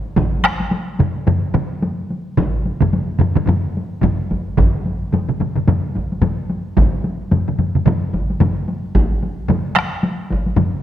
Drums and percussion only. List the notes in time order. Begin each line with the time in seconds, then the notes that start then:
0.05 taiko high
0.16 taiko, taiko low-mid, taiko mid, taiko high
0.32 taiko high
0.44 taiko rim, taiko high
0.60 taiko high
0.71 taiko high
0.88 taiko high
0.99 taiko low-mid, taiko mid, taiko high
1.16 taiko high
1.27 taiko low-mid, taiko mid, taiko high
1.43 taiko high
1.54 taiko low-mid, taiko mid, taiko high
1.72 taiko high
1.82 taiko high
1.99 taiko high
2.10 taiko high
2.28 taiko high
2.37 taiko, taiko low-mid, taiko mid, taiko high
2.55 taiko high
2.65 taiko high
2.81 taiko low-mid, taiko mid, taiko high
2.93 taiko high
3.09 taiko high
3.19 taiko low-mid, taiko mid, taiko high
3.36 taiko low-mid, taiko mid, taiko high
3.46 taiko low-mid, taiko mid, taiko high
3.66 taiko high
3.77 taiko high
3.93 taiko high
4.01 taiko, taiko low-mid, taiko mid, taiko high
4.21 taiko high
4.31 taiko, taiko high
4.47 taiko high
4.57 taiko, taiko low-mid, taiko mid, taiko high
4.74 taiko high
4.86 taiko high
5.03 taiko high
5.12 taiko low-mid, taiko mid, taiko high
5.29 taiko low-mid, taiko mid, taiko high
5.40 taiko low-mid, taiko mid, taiko high
5.56 taiko low-mid, taiko mid, taiko high
5.68 taiko low-mid, taiko mid, taiko high
5.84 taiko high
5.95 taiko, taiko high
6.12 taiko high
6.22 taiko low-mid, taiko mid, taiko high
6.50 taiko high
6.66 taiko high
6.77 taiko, taiko low-mid, taiko mid, taiko high
6.94 taiko high
7.04 taiko high
7.20 taiko high
7.31 taiko low-mid, taiko mid, taiko high
7.48 taiko low-mid, taiko mid, taiko high
7.59 taiko low-mid, taiko mid, taiko high
7.75 taiko low-mid, taiko mid, taiko high
7.86 taiko low-mid, taiko mid, taiko high
8.03 taiko high
8.13 taiko, taiko high
8.30 taiko high
8.40 taiko low-mid, taiko mid, taiko high
8.57 taiko high
8.68 taiko high
8.84 taiko high
8.95 taiko, taiko high
9.11 taiko high
9.23 taiko high
9.40 taiko high
9.48 taiko low-mid, taiko mid, taiko high
9.66 taiko high
9.76 taiko rim, taiko high
9.92 taiko high
10.03 taiko high
10.19 taiko high
10.30 taiko, taiko high
10.46 taiko high
10.56 taiko low-mid, taiko mid, taiko high
10.74 taiko high